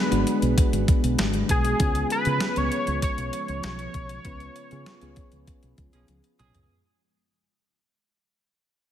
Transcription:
0.00 1.76 D3 medium
0.00 1.77 F#3 medium
0.00 6.66 G#3 medium
0.00 0.11 B3 medium
0.00 6.66 B3 medium
0.00 0.11 D4 medium
0.00 0.12 F#4 medium
0.00 1.77 F#4 medium
0.00 1.81 G#4 medium
0.00 0.84 B4 loud
0.11 0.23 G#1 medium
0.11 0.91 B3 medium
0.11 0.91 D4 medium
0.11 0.92 F#4 medium
0.11 0.92 B4 medium
0.11 closed hi-hat soft
0.27 closed hi-hat medium
0.42 0.54 B1 medium
0.42 closed hi-hat medium
0.58 kick medium
0.58 closed hi-hat medium
0.73 0.84 G#1 medium
0.73 closed hi-hat medium
0.88 kick loud
0.88 closed hi-hat medium
1.04 1.15 B1 medium
1.04 closed hi-hat soft
1.19 1.42 G#1 medium
1.19 snare loud
1.19 closed hi-hat medium
1.34 closed hi-hat soft
1.49 1.72 B1 medium
1.49 2.07 G#4 loud
1.49 kick medium
1.49 closed hi-hat medium
1.65 closed hi-hat medium
1.79 2.03 C#2 loud
1.79 6.66 C#3 medium
1.79 6.66 F3 medium
1.79 2.10 B3 medium
1.79 2.10 C#4 medium
1.79 2.10 F4 medium
1.79 6.66 F4 medium
1.79 2.10 G#4 medium
1.79 kick loud
1.79 closed hi-hat medium
1.95 closed hi-hat soft
2.10 2.59 B4 loud
2.10 closed hi-hat medium
2.25 2.38 C#3 medium
2.25 2.46 B3 medium
2.25 2.46 C#4 medium
2.25 2.46 F4 medium
2.25 2.47 G#4 medium
2.25 closed hi-hat soft
2.40 snare loud
2.40 closed hi-hat medium
2.56 2.68 C#2 medium
2.56 3.37 B3 medium
2.56 3.37 C#4 medium
2.56 3.37 F4 medium
2.56 3.38 B4 medium
2.56 3.03 C#5 loud
2.56 closed hi-hat soft
2.72 closed hi-hat medium
2.87 2.99 C#2 medium
2.87 closed hi-hat medium
3.02 6.05 C#5 loud
3.02 kick medium
3.02 closed hi-hat medium
3.18 3.29 B1 medium
3.18 closed hi-hat medium
3.33 closed hi-hat medium
3.48 3.60 C#2 medium
3.48 closed hi-hat soft
3.63 3.87 B1 medium
3.63 snare loud
3.63 closed hi-hat medium
3.79 closed hi-hat soft
3.94 4.17 B1 medium
3.94 kick medium
3.94 closed hi-hat medium
4.09 closed hi-hat medium
4.25 4.48 C#2 medium
4.25 4.55 B3 medium
4.25 4.55 C#4 medium
4.25 4.55 F4 medium
4.25 4.55 B4 medium
4.25 kick loud
4.25 closed hi-hat medium
4.40 closed hi-hat soft
4.56 closed hi-hat medium
4.71 4.83 C#3 medium
4.71 4.91 B3 medium
4.71 4.91 C#4 medium
4.71 4.91 F4 medium
4.71 4.92 G#4 medium
4.71 closed hi-hat soft
4.86 snare loud
4.86 closed hi-hat medium
5.01 5.13 C#2 medium
5.01 5.81 B3 medium
5.01 5.82 C#4 medium
5.01 5.82 F4 medium
5.01 5.82 G#4 medium
5.01 closed hi-hat soft
5.16 kick medium
5.16 closed hi-hat medium
5.32 5.44 C#2 medium
5.32 closed hi-hat soft
5.47 kick medium
5.47 closed hi-hat medium
5.63 5.75 B1 medium
5.63 closed hi-hat soft
5.78 5.90 C#2 medium
5.78 kick medium
5.78 closed hi-hat medium
5.93 6.05 B1 medium
5.93 6.07 F3 medium
5.93 6.06 C#4 medium
5.93 6.06 G#4 medium
5.93 closed hi-hat soft
6.08 6.20 C#2 medium
6.08 closed hi-hat medium
6.08 high tom soft
6.24 closed hi-hat soft
6.39 6.51 B1 medium
6.39 6.59 F3 medium
6.39 6.59 C#4 medium
6.39 6.59 G#4 medium
6.39 closed hi-hat medium
6.39 mid tom medium
6.55 6.66 C#2 medium
6.55 closed hi-hat medium
6.55 floor tom medium

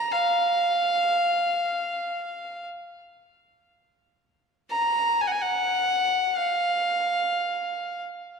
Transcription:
0.00 0.13 A#5 loud
0.12 2.66 F5 medium
4.70 5.23 A#5 medium
5.21 5.29 G#5 medium
5.27 5.33 F#5 medium
5.31 5.44 G#5 medium
5.42 6.38 F#5 medium
6.37 8.03 F5 medium

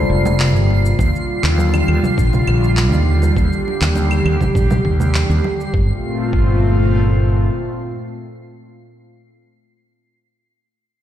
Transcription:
0.00 0.94 C3 medium
0.00 0.94 G3 medium
0.00 0.94 A#3 medium
0.00 0.94 D4 medium
0.00 0.95 F4 medium
0.00 0.95 A4 medium
0.00 0.96 C5 medium
0.00 5.75 C7 medium
0.10 0.54 F1 medium
0.25 muted conga medium
0.25 low conga medium
0.25 shaker medium
0.40 clap medium
0.40 shaker medium
0.54 0.92 G1 medium
0.54 shaker soft
0.70 muted conga medium
0.86 shaker medium
0.99 1.09 D#2 medium
0.99 5.70 D3 medium
0.99 5.70 G3 medium
0.99 3.34 F4 medium
0.99 kick loud
0.99 muted conga medium
0.99 shaker medium
1.15 shaker soft
1.43 1.81 D#2 medium
1.43 clap medium
1.43 muted conga soft
1.43 shaker medium
1.58 high conga loud
1.58 shaker medium
1.74 muted conga medium
1.74 claves medium
1.74 shaker soft
1.88 1.99 D#2 medium
1.88 claves soft
2.03 high conga medium
2.03 low conga medium
2.03 shaker medium
2.18 2.39 A#1 medium
2.18 kick loud
2.18 muted conga soft
2.18 shaker medium
2.33 low conga medium
2.33 shaker soft
2.47 2.92 A#1 medium
2.47 muted conga medium
2.47 claves medium
2.64 shaker medium
2.77 clap medium
2.77 shaker medium
2.92 3.30 D#2 medium
2.92 muted conga soft
2.92 shaker soft
3.22 muted conga medium
3.22 high conga medium
3.22 shaker medium
3.36 3.47 D#2 medium
3.36 5.72 G4 medium
3.36 kick loud
3.36 shaker medium
3.53 shaker soft
3.68 muted conga soft
3.81 4.19 D#2 medium
3.81 clap medium
3.81 shaker medium
3.95 muted conga medium
3.95 high conga medium
3.95 shaker medium
4.11 claves medium
4.11 shaker soft
4.26 4.36 D#2 medium
4.26 claves medium
4.41 kick medium
4.41 muted conga soft
4.41 high conga medium
4.41 low conga medium
4.41 shaker medium
4.55 4.77 A#1 medium
4.55 kick loud
4.55 shaker soft
4.70 muted conga medium
4.70 high conga medium
4.70 low conga medium
4.70 shaker soft
4.85 5.23 D#2 medium
4.85 kick medium
5.00 low conga medium
5.00 shaker medium
5.15 clap medium
5.15 muted conga soft
5.15 shaker soft
5.29 5.40 D#2 medium
5.29 shaker soft
5.44 muted conga medium
5.60 shaker medium
5.73 5.90 G1 medium
5.73 8.87 A#2 medium
5.73 8.87 A3 medium
5.73 8.87 C4 medium
5.73 8.87 F4 medium
5.73 kick medium
6.33 7.48 G1 medium
6.33 kick medium

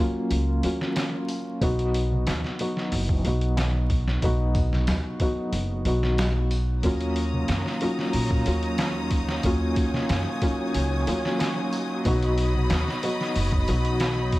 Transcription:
0.00 0.63 F#3 medium
0.00 0.64 A#3 medium
0.00 0.65 C#4 medium
0.00 0.66 F4 medium
0.31 0.60 C#2 medium
0.31 open hi-hat medium
0.63 0.79 D#2 medium
0.63 1.58 F#3 medium
0.63 1.58 A#3 medium
0.63 1.58 C#4 medium
0.63 1.59 F4 medium
0.63 open hi-hat medium
0.81 snare soft
0.96 snare loud
0.96 open hi-hat medium
0.96 darbuka tek medium
1.28 open hi-hat medium
1.61 2.24 B1 medium
1.61 2.55 F#3 medium
1.61 2.56 B3 medium
1.61 2.56 D#4 medium
1.61 2.57 F#4 loud
1.61 kick loud
1.61 open hi-hat medium
1.79 closed hi-hat soft
1.94 open hi-hat medium
2.12 darbuka dum soft
2.27 2.42 D#2 medium
2.27 snare medium
2.27 open hi-hat medium
2.27 darbuka tek medium
2.44 snare soft
2.59 3.21 F#3 medium
2.59 3.22 B3 medium
2.59 3.22 D#4 medium
2.59 3.22 F#4 medium
2.59 open hi-hat medium
2.77 snare soft
2.92 3.21 F#1 loud
2.92 open hi-hat medium
3.09 kick medium
3.25 4.20 B1 medium
3.25 4.19 F#3 medium
3.25 4.20 B3 medium
3.25 4.20 D#4 medium
3.25 4.20 F#4 medium
3.25 open hi-hat medium
3.41 closed hi-hat soft
3.57 snare loud
3.57 open hi-hat medium
3.57 darbuka tek medium
3.90 kick medium
3.90 open hi-hat medium
4.08 snare soft
4.22 4.85 B1 medium
4.22 5.17 F#3 medium
4.22 5.17 B3 medium
4.22 5.17 D#4 medium
4.22 5.18 F#4 loud
4.22 kick medium
4.22 open hi-hat medium
4.55 kick medium
4.55 open hi-hat medium
4.72 snare soft
4.72 darbuka dum soft
4.87 5.03 D#2 medium
4.87 snare loud
4.87 open hi-hat medium
4.87 darbuka tek medium
5.20 5.82 F#3 medium
5.20 5.82 B3 medium
5.20 5.83 D#4 medium
5.20 5.83 F#4 medium
5.20 kick medium
5.20 open hi-hat medium
5.53 5.82 F#1 medium
5.53 open hi-hat medium
5.85 6.80 B1 medium
5.85 6.80 F#3 medium
5.85 6.80 B3 medium
5.85 6.81 D#4 medium
5.85 6.81 F#4 medium
5.85 open hi-hat medium
6.03 snare soft
6.18 snare loud
6.18 open hi-hat medium
6.18 darbuka tek medium
6.51 open hi-hat medium
6.83 7.46 D#2 medium
6.83 7.77 F#3 medium
6.83 14.39 F#3 medium
6.83 7.78 A#3 medium
6.83 7.78 C#4 medium
6.83 14.39 D#4 medium
6.83 7.79 F4 medium
6.83 12.02 C#5 medium
6.83 9.42 A#5 medium
6.83 12.02 D#6 medium
6.83 kick loud
6.83 open hi-hat medium
7.01 closed hi-hat soft
7.16 open hi-hat medium
7.34 darbuka dum medium
7.48 7.64 F#2 medium
7.48 snare medium
7.48 open hi-hat medium
7.48 darbuka tek medium
7.66 snare soft
7.81 8.43 F#3 medium
7.81 8.43 A#3 medium
7.81 8.43 C#4 medium
7.81 8.43 F4 medium
7.81 open hi-hat medium
7.99 snare soft
8.13 8.43 A#1 medium
8.13 open hi-hat medium
8.31 kick medium
8.46 9.41 D#2 medium
8.46 9.40 F#3 medium
8.46 9.41 A#3 medium
8.46 9.41 C#4 medium
8.46 9.41 F4 medium
8.46 open hi-hat medium
8.63 closed hi-hat soft
8.78 snare loud
8.78 open hi-hat medium
8.78 darbuka tek medium
9.11 kick medium
9.11 open hi-hat medium
9.29 snare soft
9.43 10.06 D#2 medium
9.43 10.38 F#3 medium
9.43 10.39 A#3 medium
9.43 10.39 C#4 medium
9.43 10.39 F4 loud
9.43 12.03 G#5 medium
9.43 kick loud
9.43 open hi-hat medium
9.76 kick medium
9.76 open hi-hat medium
9.94 snare soft
9.94 darbuka dum medium
10.09 10.25 F#2 medium
10.09 snare medium
10.09 open hi-hat medium
10.09 darbuka tek medium
10.42 11.03 F#3 medium
10.42 11.04 A#3 medium
10.42 11.04 C#4 medium
10.42 11.04 F4 medium
10.42 kick medium
10.42 open hi-hat medium
10.74 11.04 C#2 medium
10.74 open hi-hat medium
11.07 11.22 D#2 medium
11.07 12.01 F#3 medium
11.07 12.01 A#3 medium
11.07 12.02 C#4 medium
11.07 12.02 F4 medium
11.07 open hi-hat medium
11.25 snare soft
11.39 snare loud
11.39 open hi-hat medium
11.39 darbuka tek medium
11.73 open hi-hat medium
12.05 12.68 B1 medium
12.05 12.99 F#3 medium
12.05 12.99 B3 medium
12.05 13.00 D#4 medium
12.05 13.00 F#4 loud
12.05 14.39 D#5 medium
12.05 14.39 B5 medium
12.05 14.39 D#6 medium
12.05 kick loud
12.05 open hi-hat medium
12.22 closed hi-hat soft
12.38 open hi-hat medium
12.55 darbuka dum medium
12.70 12.86 D#2 medium
12.70 snare loud
12.70 open hi-hat medium
12.70 darbuka tek medium
12.88 snare soft
13.03 13.65 F#3 medium
13.03 13.65 B3 medium
13.03 13.65 D#4 medium
13.03 13.65 F#4 medium
13.03 open hi-hat medium
13.21 snare soft
13.36 13.65 F#1 medium
13.36 open hi-hat medium
13.52 kick medium
13.68 14.39 B1 medium
13.68 14.39 F#3 medium
13.68 14.39 B3 medium
13.68 14.39 D#4 medium
13.68 14.39 F#4 medium
13.68 open hi-hat medium
13.85 closed hi-hat soft
14.00 snare loud
14.00 open hi-hat medium
14.00 darbuka tek medium
14.32 kick medium
14.32 open hi-hat medium

